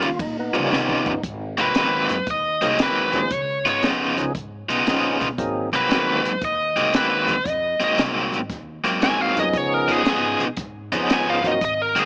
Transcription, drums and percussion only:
0.02 ride medium
0.19 kick loud
0.19 ride medium
0.55 ride medium
0.73 snare medium
0.89 kick medium
1.06 kick loud
1.23 kick loud
1.23 closed hi-hat medium
1.58 closed hi-hat medium
1.75 snare loud
1.75 closed hi-hat medium
2.09 snare soft
2.09 closed hi-hat medium
2.27 kick loud
2.27 closed hi-hat medium
2.62 closed hi-hat medium
2.79 snare loud
2.79 closed hi-hat medium
3.13 kick medium
3.13 snare soft
3.13 closed hi-hat medium
3.30 kick loud
3.30 closed hi-hat medium
3.66 closed hi-hat medium
3.83 snare loud
3.83 closed hi-hat medium
4.18 closed hi-hat medium
4.35 kick loud
4.35 closed hi-hat medium
4.70 closed hi-hat medium
4.87 snare loud
4.87 closed hi-hat medium
5.21 kick medium
5.21 snare soft
5.21 closed hi-hat medium
5.38 kick loud
5.38 closed hi-hat medium
5.73 closed hi-hat medium
5.90 snare loud
5.90 closed hi-hat medium
6.25 closed hi-hat medium
6.41 kick loud
6.41 closed hi-hat medium
6.77 closed hi-hat medium
6.93 snare loud
6.93 closed hi-hat loud
7.28 kick medium
7.28 snare soft
7.28 closed hi-hat medium
7.46 kick loud
7.46 closed hi-hat loud
7.80 closed hi-hat medium
7.98 snare loud
7.98 closed hi-hat medium
8.33 closed hi-hat medium
8.50 kick loud
8.50 snare soft
8.50 closed hi-hat medium
8.85 closed hi-hat medium
9.02 snare loud
9.02 closed hi-hat medium
9.37 snare soft
9.37 closed hi-hat medium
9.53 kick loud
9.53 closed hi-hat medium
9.89 closed hi-hat medium
10.05 snare loud
10.05 closed hi-hat medium
10.40 closed hi-hat medium
10.57 kick loud
10.57 snare soft
10.57 closed hi-hat medium
10.92 closed hi-hat medium
11.10 snare loud
11.10 closed hi-hat medium
11.44 kick medium
11.44 closed hi-hat medium
11.61 kick loud
11.61 closed hi-hat medium
11.96 closed hi-hat medium

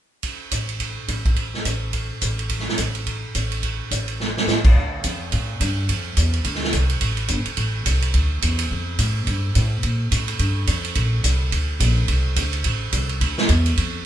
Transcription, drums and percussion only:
0.23 kick soft
0.23 ride medium
0.51 kick soft
0.51 hi-hat pedal soft
0.51 ride medium
0.69 ride soft
0.80 kick soft
0.80 ride soft
1.08 kick soft
1.08 hi-hat pedal soft
1.08 ride medium
1.25 kick soft
1.25 ride soft
1.36 kick soft
1.36 ride soft
1.54 snare soft
1.65 kick soft
1.65 hi-hat pedal medium
1.65 ride medium
1.93 kick soft
1.93 ride soft
2.22 kick soft
2.22 hi-hat pedal medium
2.22 ride medium
2.39 ride soft
2.49 kick soft
2.49 ride medium
2.59 snare soft
2.69 snare soft
2.78 kick soft
2.78 hi-hat pedal medium
2.78 ride medium
2.95 ride soft
3.07 kick soft
3.07 ride soft
3.35 kick soft
3.35 hi-hat pedal soft
3.35 ride medium
3.52 ride soft
3.63 kick soft
3.63 ride soft
3.91 kick soft
3.91 hi-hat pedal medium
3.91 ride medium
4.08 ride soft
4.20 snare soft
4.37 snare soft
4.48 snare medium
4.48 hi-hat pedal soft
4.64 kick medium
4.64 crash medium
4.76 kick soft
5.04 kick soft
5.04 hi-hat pedal medium
5.04 ride medium
5.32 kick soft
5.32 ride medium
5.61 kick soft
5.61 hi-hat pedal medium
5.61 ride medium
5.89 kick soft
5.89 ride medium
6.17 kick soft
6.17 hi-hat pedal medium
6.17 ride medium
6.34 ride soft
6.44 kick soft
6.44 ride medium
6.55 snare soft
6.64 snare soft
6.73 kick soft
6.73 hi-hat pedal soft
6.73 ride medium
6.90 ride soft
7.01 kick soft
7.01 ride medium
7.17 ride soft
7.28 kick soft
7.28 hi-hat pedal medium
7.28 ride medium
7.46 ride soft
7.57 kick soft
7.57 ride medium
7.86 kick soft
7.86 hi-hat pedal soft
7.86 ride medium
8.02 ride soft
8.14 kick soft
8.14 ride medium
8.42 kick soft
8.42 hi-hat pedal soft
8.42 ride medium
8.59 ride medium
8.71 kick soft
8.99 kick soft
8.99 hi-hat pedal soft
8.99 ride medium
9.27 kick soft
9.27 ride soft
9.55 kick soft
9.55 hi-hat pedal soft
9.55 ride medium
9.83 kick soft
9.83 ride soft
10.11 kick soft
10.11 hi-hat pedal soft
10.11 ride medium
10.28 ride soft
10.39 kick soft
10.39 ride medium
10.67 kick soft
10.67 hi-hat pedal soft
10.67 ride medium
10.85 ride soft
10.95 kick soft
10.95 ride medium
11.24 kick soft
11.24 hi-hat pedal medium
11.24 ride medium
11.52 kick soft
11.52 ride medium
11.80 kick soft
11.80 hi-hat pedal medium
11.80 ride medium
12.08 kick soft
12.08 ride medium
12.36 kick soft
12.36 hi-hat pedal medium
12.36 ride medium
12.53 ride soft
12.64 kick soft
12.64 ride medium
12.93 kick soft
12.93 hi-hat pedal medium
12.93 ride medium
13.09 ride soft
13.21 kick soft
13.21 ride medium
13.38 snare medium
13.49 kick soft
13.49 hi-hat pedal soft
13.49 ride medium
13.66 ride soft
13.77 kick soft
13.77 ride medium

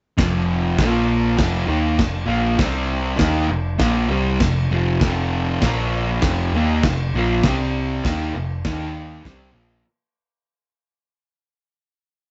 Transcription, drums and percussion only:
0.18 kick loud
0.18 snare loud
0.18 crash medium
0.78 kick loud
0.78 snare loud
0.78 crash medium
1.38 kick loud
1.38 snare loud
1.38 crash medium
1.99 kick loud
1.99 snare loud
1.99 crash medium
2.59 kick loud
2.59 snare loud
2.59 crash medium
3.19 kick loud
3.19 snare loud
3.19 crash medium
3.79 kick loud
3.79 snare loud
3.79 crash medium
4.40 kick loud
4.40 snare loud
4.40 crash medium
5.01 kick loud
5.01 snare loud
5.01 crash medium
5.62 kick loud
5.62 snare loud
5.62 crash medium
6.22 kick loud
6.22 snare loud
6.22 crash medium
6.83 kick loud
6.83 snare loud
6.83 crash medium
7.43 kick loud
7.43 snare loud
7.43 crash medium
8.05 kick loud
8.05 snare loud
8.05 crash medium
8.65 kick loud
8.65 snare loud
8.65 crash medium
9.25 kick loud
9.25 snare loud
9.25 crash medium

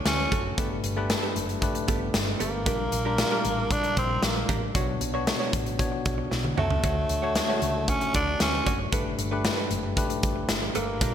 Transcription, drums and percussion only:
0.06 snare medium
0.06 closed hi-hat loud
0.32 kick medium
0.32 closed hi-hat medium
0.58 kick loud
0.58 closed hi-hat medium
0.84 closed hi-hat medium
1.10 snare loud
1.10 closed hi-hat medium
1.36 closed hi-hat medium
1.49 closed hi-hat soft
1.62 kick medium
1.62 closed hi-hat medium
1.75 closed hi-hat soft
1.88 kick medium
1.88 closed hi-hat medium
2.14 snare loud
2.14 closed hi-hat medium
2.40 closed hi-hat medium
2.66 kick loud
2.66 closed hi-hat medium
2.92 closed hi-hat medium
3.18 snare loud
3.18 closed hi-hat medium
3.45 closed hi-hat medium
3.71 kick medium
3.71 closed hi-hat medium
3.84 closed hi-hat soft
3.97 kick medium
3.97 closed hi-hat medium
4.23 snare medium
4.23 closed hi-hat loud
4.49 kick medium
4.49 closed hi-hat medium
4.75 kick loud
4.75 closed hi-hat medium
5.01 closed hi-hat medium
5.27 snare loud
5.27 closed hi-hat medium
5.53 kick medium
5.53 closed hi-hat medium
5.66 closed hi-hat soft
5.79 kick medium
5.79 closed hi-hat medium
6.05 kick medium
6.05 closed hi-hat medium
6.31 snare medium
6.45 high tom medium
6.58 mid tom medium
6.70 floor tom medium
6.83 kick loud
6.83 closed hi-hat medium
7.09 closed hi-hat medium
7.35 snare loud
7.35 closed hi-hat medium
7.62 closed hi-hat medium
7.88 kick medium
7.88 closed hi-hat medium
8.01 closed hi-hat soft
8.14 kick medium
8.14 closed hi-hat medium
8.40 snare loud
8.40 closed hi-hat loud
8.66 kick medium
8.66 closed hi-hat medium
8.93 kick loud
8.93 closed hi-hat medium
9.19 closed hi-hat medium
9.45 snare loud
9.45 closed hi-hat medium
9.71 closed hi-hat medium
9.97 kick medium
9.97 closed hi-hat medium
10.10 closed hi-hat soft
10.23 kick medium
10.23 closed hi-hat medium
10.49 snare medium
10.49 closed hi-hat loud
10.75 closed hi-hat medium
11.01 kick loud
11.01 closed hi-hat medium

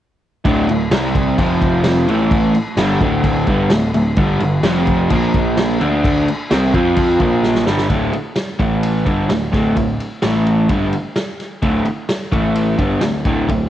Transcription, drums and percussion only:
0.45 kick loud
0.45 crash medium
0.69 crash medium
0.91 snare loud
0.91 crash medium
1.15 kick medium
1.15 crash medium
1.38 kick medium
1.38 crash medium
1.61 kick medium
1.61 crash medium
1.84 snare loud
1.84 crash medium
2.08 crash medium
2.31 kick loud
2.31 crash medium
2.54 crash medium
2.77 snare loud
2.77 crash medium
3.01 kick medium
3.01 crash medium
3.24 kick medium
3.24 crash medium
3.47 kick medium
3.47 crash medium
3.70 snare loud
3.70 crash medium
3.94 crash medium
4.16 kick loud
4.16 crash medium
4.40 crash medium
4.63 snare loud
4.63 crash medium
4.87 kick medium
4.87 crash medium
5.10 kick medium
5.10 crash loud
5.34 kick medium
5.34 crash medium
5.57 snare loud
5.57 crash medium
5.81 crash medium
6.04 kick loud
6.04 crash medium
6.28 crash medium
6.51 snare loud
6.51 crash medium
6.74 kick medium
6.74 crash medium
6.96 kick medium
6.96 crash medium
7.20 kick medium
7.20 crash medium
7.43 snare medium
7.55 snare medium
7.67 snare medium
7.78 snare medium
7.90 kick loud
7.90 ride medium
8.13 ride medium
8.36 snare loud
8.36 ride medium
8.59 kick loud
8.59 ride medium
8.83 ride loud
9.06 kick loud
9.06 ride medium
9.29 snare loud
9.29 ride medium
9.53 kick loud
9.53 snare soft
9.53 ride medium
9.76 kick medium
9.76 ride medium
10.00 ride medium
10.22 snare loud
10.22 ride loud
10.47 ride medium
10.69 kick loud
10.69 ride medium
10.93 ride medium
11.16 snare loud
11.16 ride medium
11.39 snare soft
11.39 ride medium
11.62 kick loud
11.62 ride medium
11.85 ride medium
12.09 snare loud
12.09 ride medium
12.32 kick loud
12.32 ride medium
12.56 ride loud
12.79 kick loud
12.79 ride medium
13.01 snare loud
13.01 ride medium
13.25 kick loud
13.25 ride medium
13.49 kick medium
13.49 ride medium

